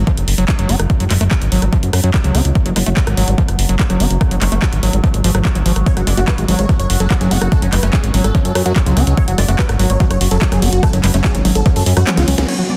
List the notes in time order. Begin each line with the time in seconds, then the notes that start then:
Already playing: F#3
0.07 F3, kick, cross-stick, closed hi-hat
0.17 F#1, closed hi-hat
0.28 F#1, open hi-hat
0.38 F#1 F#3, closed hi-hat
0.48 kick, cross-stick, clap, closed hi-hat
0.59 F#1 F#3, closed hi-hat
0.69 F#1 C#4, open hi-hat
0.80 F#1, cross-stick, closed hi-hat
0.90 kick, closed hi-hat
1.00 F#1 F#3, closed hi-hat
1.11 F#1 G#3, clap, open hi-hat
1.21 F#1 A3, cross-stick, closed hi-hat
1.31 F#4, kick, clap, closed hi-hat
1.42 G#1, closed hi-hat
1.52 G#1 F#3, open hi-hat
1.62 G#1 G#3, cross-stick, closed hi-hat
1.73 F3, kick, closed hi-hat
1.83 F#2, closed hi-hat
1.93 F#2, cross-stick, open hi-hat
2.04 F#2 F#3, closed hi-hat
2.14 kick, clap, closed hi-hat
2.24 C#2 F#3, closed hi-hat
2.35 C#2 C#4, cross-stick, open hi-hat
2.45 C#2, closed hi-hat
2.55 kick, closed hi-hat
2.66 F#1 F#3, closed hi-hat
2.76 F#1 G#3, cross-stick, open hi-hat
2.86 F#1 A3, closed hi-hat
2.97 F#4, kick, clap, closed hi-hat
3.07 G#1, cross-stick, closed hi-hat
3.17 G#1 F#3, open hi-hat
3.28 G#1 G#3, closed hi-hat
3.38 F3, kick, closed hi-hat
3.48 F#1, cross-stick, closed hi-hat
3.59 F#1, open hi-hat
3.69 F#1 F#3, closed hi-hat
3.79 kick, clap, closed hi-hat
3.90 F#1 F#3, cross-stick, closed hi-hat
4.00 F#1 C#4, open hi-hat
4.11 F#1, closed hi-hat
4.21 kick, cross-stick, closed hi-hat
4.31 F#1 F#3, closed hi-hat
4.42 F#1 G#3, clap, open hi-hat
4.52 F#1 A3, closed hi-hat
4.62 F#4, kick, cross-stick, clap, closed hi-hat
4.73 G#1, closed hi-hat
4.83 G#1 F#3, open hi-hat
4.93 G#1 G#3, closed hi-hat
5.04 F3, kick, cross-stick, closed hi-hat
5.14 G#1, closed hi-hat
5.24 G#1 F3, open hi-hat
5.35 G#1 F#3, cross-stick, closed hi-hat
5.45 kick, clap, closed hi-hat
5.55 G#1 F#3, closed hi-hat
5.66 G#1 F3, open hi-hat
5.76 G#1, cross-stick, closed hi-hat
5.86 C#5, kick, closed hi-hat
5.97 F#1 F#3 F#4, cross-stick, closed hi-hat
6.07 F#1 G#3 D5, open hi-hat
6.17 F#1 A3 F#4, closed hi-hat
6.28 F#4 B4, kick, cross-stick, clap, closed hi-hat
6.38 G#1 F#4, closed hi-hat
6.48 G#1 F#3 F#4, open hi-hat
6.59 G#1 G#3 C#5, closed hi-hat
6.69 F3 F#4, kick, cross-stick, closed hi-hat
6.79 F#1 C#5, closed hi-hat
6.90 F#1 F#4, open hi-hat
7.00 F#1 F#3 A4, closed hi-hat
7.11 F#4, kick, cross-stick, clap, closed hi-hat
7.21 F#1 F#3 G#4, closed hi-hat
7.31 F#1 C#4 F#4, open hi-hat
7.42 F#1 F#4, cross-stick, closed hi-hat
7.52 A4, kick, closed hi-hat
7.62 F#1 F#3 C#4, closed hi-hat
7.73 F#1 G#3 B4, clap, open hi-hat
7.83 F#1 A3 C#4, cross-stick, closed hi-hat
7.93 F#4 G#4, kick, clap, closed hi-hat
8.04 G#1 C#4, closed hi-hat
8.14 G#1 F#3 C#4, open hi-hat
8.24 G#1 G#3 A4, cross-stick, closed hi-hat
8.35 F3 C#4, kick, closed hi-hat
8.45 F#2 A4, closed hi-hat
8.55 F#2 C#4, cross-stick, open hi-hat
8.66 F#2 F#3 F#4, closed hi-hat
8.76 C#4, kick, clap, closed hi-hat
8.86 C#2 F#3 F4, closed hi-hat
8.97 C#2 C#4, cross-stick, open hi-hat
9.07 C#2 C#4, closed hi-hat
9.17 C#5, kick, closed hi-hat
9.28 F#1 F#3 F#4, closed hi-hat
9.38 F#1 G#3 D5, cross-stick, open hi-hat
9.48 F#1 A3 F#4, closed hi-hat
9.59 F#4 B4, kick, clap, closed hi-hat
9.69 G#1 F#4, cross-stick, closed hi-hat
9.79 G#1 F#3 F#4, open hi-hat
9.90 G#1 G#3 C#5, closed hi-hat
10.00 F3 F#4, kick, closed hi-hat
10.11 F#1 C#5, cross-stick, closed hi-hat
10.21 F#1 F#4, open hi-hat
10.31 F#1 F#3 A4, closed hi-hat
10.42 F#4, kick, clap, closed hi-hat
10.52 F#1 F#3 G#4, cross-stick, closed hi-hat
10.62 F#1 C#4 F#4, open hi-hat
10.73 F#1 F#4, closed hi-hat
10.83 A4, kick, cross-stick, closed hi-hat
10.93 F#1 F#3 C#4, closed hi-hat
11.04 F#1 G#3 B4, clap, open hi-hat
11.14 F#1 A3 C#4, closed hi-hat
11.24 F#4 G#4, kick, cross-stick, clap, closed hi-hat
11.35 G#1 C#4, closed hi-hat
11.45 G#1 F#3 C#4, open hi-hat
11.55 G#1 G#3 A4, closed hi-hat
11.66 F3 C#4, kick, cross-stick, closed hi-hat
11.76 F#2 A4, open hi-hat
11.86 F#2 C#4, open hi-hat
11.97 F#2 F#3 F#4, cross-stick, closed hi-hat
12.07 C#4, clap, closed hi-hat, high tom
12.17 C#2 F4 F#4, snare, closed hi-hat
12.28 C#2 F#3 C#4, open hi-hat
12.38 C#2 C#4, cross-stick, snare, closed hi-hat
12.48 F#3 C#5, crash, downlifter
12.59 F#3 F#4
12.69 G#3 D5